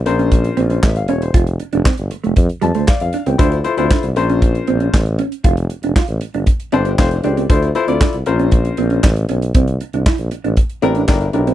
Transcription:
0.06 A#1 C#4 F4 A#4 C5, muted clean electric guitar stroke, closed hi-hat
0.19 C#4, closed hi-hat
0.32 muted clean electric guitar stroke, kick, closed hi-hat
0.44 closed hi-hat
0.57 A#1 C4, closed hi-hat
0.70 C#4 C5, closed hi-hat
0.83 A1 E5, kick, snare, clap
0.96 F5, closed hi-hat
1.08 E1 C#4 C#5, closed hi-hat
1.22 C5, closed hi-hat
1.34 F1 F4, kick, closed hi-hat
1.47 closed hi-hat
1.60 muted clean electric guitar stroke, closed hi-hat
1.72 F1 D4, closed hi-hat
1.85 C4, kick, snare, clap
1.98 G1, closed hi-hat
2.11 muted clean electric guitar stroke, closed hi-hat
2.24 F1 A3, closed hi-hat
2.36 F2, muted clean electric guitar stroke, kick, closed hi-hat
2.49 closed hi-hat
2.61 F2 G3 A5, closed hi-hat
2.75 D2 A3 C5, closed hi-hat
2.88 D5 F5, kick, snare, clap
3.00 F2 F5, closed hi-hat
3.13 D4, closed hi-hat
3.26 C#2 C4 G5, closed hi-hat
3.38 D2 D4 E4 F4 A4 C5, kick, closed hi-hat
3.52 closed hi-hat
3.64 E4 F4 A4 C5, muted clean electric guitar stroke, closed hi-hat
3.77 D2 C4 E4 F4 A4 C5, closed hi-hat
3.91 D4, kick, snare, clap
4.03 C2, closed hi-hat
4.16 A#1 C#4 F4 A#4 C5, muted clean electric guitar stroke, closed hi-hat
4.30 C#4, closed hi-hat
4.42 muted clean electric guitar stroke, kick, closed hi-hat
4.55 closed hi-hat
4.67 A#1 C4, closed hi-hat
4.80 C#4, closed hi-hat
4.94 A1, kick, snare, clap
5.06 closed hi-hat
5.19 C#4, closed hi-hat
5.32 closed hi-hat
5.44 F1 F4, kick, closed hi-hat
5.57 closed hi-hat
5.70 muted clean electric guitar stroke, closed hi-hat
5.83 F1 D4, closed hi-hat
5.96 F4, kick, snare, clap
6.08 A1, closed hi-hat
6.21 muted clean electric guitar stroke, closed hi-hat
6.34 G1 D4, closed hi-hat
6.46 muted clean electric guitar stroke, kick, closed hi-hat
6.60 closed hi-hat
6.72 G1 C4 D4 G4 A4 C5 A5, closed hi-hat
6.85 D4, closed hi-hat
6.98 F1 D4 G4 A4 C5 F5, kick, snare, clap
7.11 closed hi-hat
7.24 C#2 D4 G4 A4 C5 D5, closed hi-hat
7.37 C4, closed hi-hat
7.49 D2 D4 E4 F4 A4 C5, kick, closed hi-hat
7.62 closed hi-hat
7.75 E4 F4 A4 C5, muted clean electric guitar stroke, closed hi-hat
7.87 D2 C4 E4 F4 A4 D5, closed hi-hat
8.01 D4, kick, snare, clap
8.13 C2, closed hi-hat
8.26 A#1 C#4 F4 A#4 C5, muted clean electric guitar stroke, closed hi-hat
8.39 C#4, closed hi-hat
8.52 muted clean electric guitar stroke, kick, closed hi-hat
8.65 closed hi-hat
8.77 A#1 C4, closed hi-hat
8.90 C#4, closed hi-hat
9.04 A1, kick, snare, clap
9.16 closed hi-hat
9.29 B1 C#4, closed hi-hat
9.42 closed hi-hat
9.55 C2 C4, kick, closed hi-hat
9.68 closed hi-hat
9.81 muted clean electric guitar stroke, closed hi-hat
9.93 C2 D4, closed hi-hat
10.06 E4, kick, snare, clap
10.18 A#1, closed hi-hat
10.31 muted clean electric guitar stroke, closed hi-hat
10.44 A1 D4, closed hi-hat
10.57 muted clean electric guitar stroke, kick, closed hi-hat
10.70 closed hi-hat
10.82 A1 C4 D4 E4 G4 A#4, closed hi-hat
10.95 D4, closed hi-hat
11.08 G1 D4 E4 G4 A#4, kick, snare, clap
11.21 closed hi-hat
11.33 B1 D4 E4 G4 A#4, closed hi-hat
11.47 C4, closed hi-hat

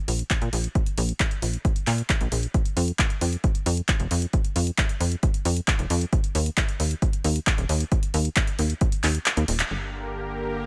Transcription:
0.08 A#1, open hi-hat
0.19 closed hi-hat
0.30 kick, clap, closed hi-hat
0.42 A#2, closed hi-hat
0.53 A#1, open hi-hat
0.64 closed hi-hat
0.75 kick, closed hi-hat
0.86 closed hi-hat
0.98 A#1, open hi-hat
1.09 closed hi-hat
1.20 kick, clap, closed hi-hat
1.31 closed hi-hat
1.42 A#1, open hi-hat
1.54 closed hi-hat
1.65 kick, closed hi-hat
1.76 closed hi-hat
1.87 A#2, clap, open hi-hat
1.98 closed hi-hat
2.10 kick, clap, closed hi-hat
2.21 A#1, closed hi-hat
2.32 A#1, open hi-hat
2.43 closed hi-hat
2.54 kick, closed hi-hat
2.66 closed hi-hat
2.77 F2, open hi-hat
2.88 closed hi-hat
2.99 kick, clap, closed hi-hat
3.10 closed hi-hat
3.21 F2, open hi-hat
3.33 closed hi-hat
3.44 kick, closed hi-hat
3.55 closed hi-hat
3.66 F2, open hi-hat
3.77 closed hi-hat
3.88 kick, clap, closed hi-hat
4.00 F1, closed hi-hat
4.11 F2, open hi-hat
4.22 closed hi-hat
4.33 kick, closed hi-hat
4.45 closed hi-hat
4.56 F2, open hi-hat
4.67 closed hi-hat
4.78 kick, clap, closed hi-hat
4.89 closed hi-hat
5.00 F2, open hi-hat
5.12 closed hi-hat
5.23 kick, closed hi-hat
5.34 closed hi-hat
5.45 F2, open hi-hat
5.57 closed hi-hat
5.68 kick, clap, closed hi-hat
5.79 F1, closed hi-hat
5.90 F2, open hi-hat
6.01 closed hi-hat
6.13 kick, closed hi-hat
6.24 closed hi-hat
6.35 D#2, open hi-hat
6.46 closed hi-hat
6.57 kick, clap, closed hi-hat
6.69 closed hi-hat
6.80 D#2, open hi-hat
6.91 closed hi-hat
7.02 kick, closed hi-hat
7.13 closed hi-hat
7.24 D#2, open hi-hat
7.36 closed hi-hat
7.47 kick, clap, closed hi-hat
7.58 D#1, closed hi-hat
7.69 D#2, open hi-hat
7.80 closed hi-hat
7.92 kick, closed hi-hat
8.03 closed hi-hat
8.14 D#2, open hi-hat
8.25 closed hi-hat
8.36 kick, clap, closed hi-hat
8.47 closed hi-hat
8.59 D#2, open hi-hat
8.70 closed hi-hat
8.81 kick, closed hi-hat
8.92 closed hi-hat
9.04 D#2, clap, open hi-hat
9.15 closed hi-hat
9.26 clap, closed hi-hat
9.37 D#2, closed hi-hat
9.48 D#1, open hi-hat
9.59 clap, closed hi-hat
9.71 G1 D3 A#3 G4 A#4, crash

